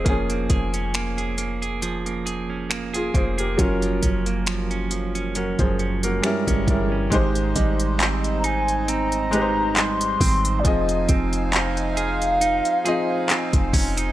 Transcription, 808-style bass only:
X:1
M:4/4
L:1/16
Q:"Swing 16ths" 1/4=68
K:Ab
V:1 name="808-style bass" clef=bass
F,,,2 F,,,12 F,,,2 | _G,,,2 G,,,6- G,,, G,,,3 z =G,,, G,,,2 | A,,,2 A,,,12 A,,,2 | F,,,2 F,,,6- F,,, z4 F,,, F,,,2 |]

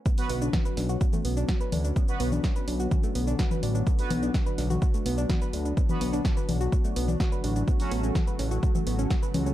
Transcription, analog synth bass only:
X:1
M:4/4
L:1/8
Q:1/4=126
K:Bm
V:1 name="Analog synth bass" clef=bass
z B,,, z B,,, z B,,, z D,, | z B,,, z B,,, z B,,, z A,,, | z B,,, z B,,, z B,,, z D,, | z B,,, z B,,, z B,,, z A,,, |
z A,,, z A,,, z A,,, z C,, |]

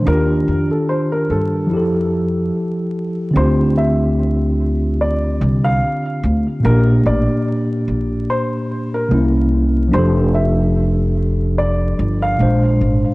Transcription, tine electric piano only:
X:1
M:4/4
L:1/8
Q:"Swing 16ths" 1/4=73
K:Dm
V:1 name="Tine electric piano"
[_E,DFG]4 [F,=EGA]4 | [D,CDFG]8 | [B,,B,DG]6 [C,B,_DE]2 | [F,DGA]6 [B,,_A,Dc]2 |]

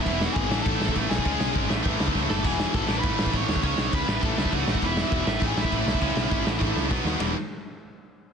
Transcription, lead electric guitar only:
X:1
M:4/4
L:1/16
Q:1/4=202
K:E
V:1 name="Lead electric guitar"
[Ee]3 [Ff] [Gg]4 [Aa]4 z2 [Gg]2- | [Gg]4 z8 z2 [Aa]2 | [Gg]4 [Aa]3 [Bb]4- [Bb] [cc']4 | [cc']4 [Bb]4 [Aa]2 [Ee]2 [Ff]4 |
[Ee]3 [Ee]4- [Ee] [Gg]2 [Ee]6- | [Ee]12 z4 | z16 |]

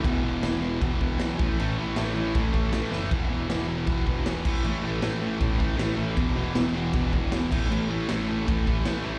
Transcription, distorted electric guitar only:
X:1
M:4/4
L:1/8
Q:1/4=157
K:Ador
V:1 name="Distorted electric guitar" clef=bass
[E,,B,,E,] [E,,B,,E,] [E,,B,,E,] [E,,B,,E,] [E,,B,,E,] [E,,B,,E,] [E,,B,,E,] [A,,E,A,] | [A,,E,A,] [A,,E,A,] [A,,E,A,] [A,,E,A,] [A,,E,A,] [A,,E,A,] [A,,E,A,] [A,,E,A,] | [E,,B,,E,] [E,,B,,E,] [E,,B,,E,] [E,,B,,E,] [E,,B,,E,] [E,,B,,E,] [E,,B,,E,] [A,,E,A,] | [A,,E,A,] [A,,E,A,] [A,,E,A,] [A,,E,A,] [A,,E,A,] [A,,E,A,] [A,,E,A,] [A,,E,A,] |
[E,,B,,E,] [E,,B,,E,] [E,,B,,E,] [E,,B,,E,] [E,,B,,E,] [E,,B,,E,] [E,,B,,E,] [A,,E,A,] | [A,,E,A,] [A,,E,A,] [A,,E,A,] [A,,E,A,] [A,,E,A,] [A,,E,A,] [A,,E,A,] [A,,E,A,] |]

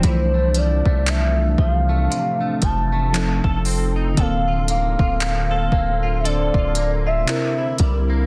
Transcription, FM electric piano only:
X:1
M:4/4
L:1/8
Q:"Swing 16ths" 1/4=58
K:F
V:1 name="FM electric piano"
[E,F,A,]6 [F,C_EA]2 | [D,B,CA]6 [C,CEB]2 |]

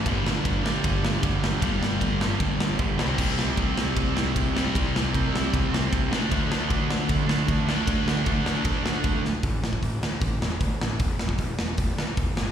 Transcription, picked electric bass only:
X:1
M:4/4
L:1/8
Q:1/4=154
K:A
V:1 name="Picked electric bass" clef=bass
=G,,, G,,, G,,, G,,, G,,, G,,, G,,,2 | =G,,, G,,, G,,, G,,, G,,, G,,, G,,, =C,, | =C,, C,, C,, C,, C,, C,, C,,2 | =C,, C,, C,, C,, C,, C,, C,, D,, |
D,, D,, D,, D,, D,, D,, D,,2 | D,, D,, D,, D,, D,, D,, D,,2 | A,,, A,,, A,,, D,, A,,, E,,, D,, A,,, | E,,, E,,, E,,, E,,, E,,, D,, E,,, =G,,, |]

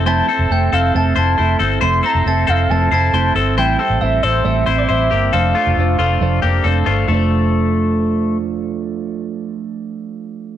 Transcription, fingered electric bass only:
X:1
M:4/4
L:1/16
Q:1/4=136
K:F
V:1 name="Fingered electric bass" clef=bass
F,,,2 z F,,, F,,,2 F,,,2 F,,,2 F,,,2 F,,,2 G,,,2 | F,,,2 z F,,, F,,,2 F,,,2 F,,,2 F,,,2 F,,,2 G,,,2 | A,,,2 z A,,, A,,,2 A,,,2 A,,,2 A,,,2 A,,,2 G,,,2 | F,,,2 z F,,, F,,,2 F,,,2 F,,,2 F,,,2 F,,,2 G,,,2 |
F,,,16- | F,,,16 |]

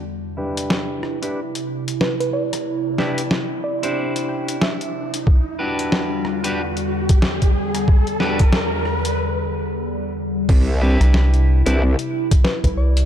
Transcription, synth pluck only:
X:1
M:4/4
L:1/16
Q:"Swing 16ths" 1/4=92
K:Clyd
V:1 name="Synth pluck"
z12 B B d z | z2 d z3 d z3 g z e4 | z16 | z16 |
z12 B B d z |]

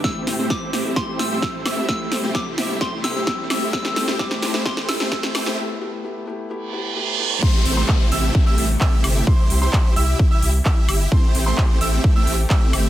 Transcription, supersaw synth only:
X:1
M:4/4
L:1/16
Q:1/4=130
K:Am
V:1 name="Supersaw synth"
[A,CEGc]3 [A,CEGc]3 [A,CEGe]2 [Cc]3 [A,CEGc]3 [A,CEGe]2 | [A,C]3 [A,CEGc]3 [A,CEGe]2 [A,CEGc]3 [A,CEGc]3 [A,CEGe]2 | C3 [A,CEGc] [A,CEGc]3 [A,CEGc] z3 [A,CEGc] [CEc]3 [A,CEGc] | z16 |
[A,CEGc]3 [A,CEGc]3 [A,CEGe]3 [A,CEGe]2 z [A,CEGe]4 | z3 [EGc]3 [EGe]3 [EGe]2 z [EGe]4 | [A,CEGc]3 [A,CEGc]3 [A,CEGe]3 [A,CEGe]2 z [A,CEGe]4 |]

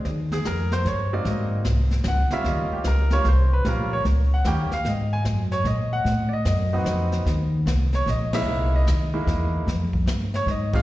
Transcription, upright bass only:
X:1
M:3/4
L:1/8
Q:"Swing" 1/4=150
K:Cphr
V:1 name="Upright bass" clef=bass
E,,2 F,,2 G,,2 | A,,2 C,,2 D,, z | E,, z D,,2 C,,2 | B,,,2 D,,2 E,, z |
A,,2 _G,,2 B,,2 | =A,,2 ^F,,2 =F,,2 | E,,2 C,,2 B,,,2 | C,,2 ^D,,2 =E,,2 |
F,,2 G,,2 A,,2 |]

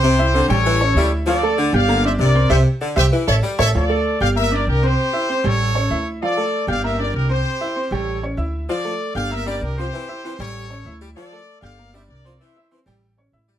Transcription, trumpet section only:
X:1
M:4/4
L:1/8
Q:1/4=194
K:Dm
V:1 name="Trumpet section"
[Gc]3 [A^c]4 z | [Ad]3 [df]2 [ce] [Bd]2 | [Gce] z2 [Gce] z [A^ce] z [Ace] | [Ad]3 [df] [Be] [Bd] [GB] [Gc]- |
[Gc]3 [A^c]4 z | [Ad]3 [df] [Be] [Bd] [GB] [Gc]- | [Gc]3 [A^c]2 z3 | [Ad]3 [df] [Be] [Bd] [GB] [Gc]- |
[Gc]3 [A^c]4 z | [Ad]3 [df]2 [ce] [Bd]2 | [ce]2 z6 |]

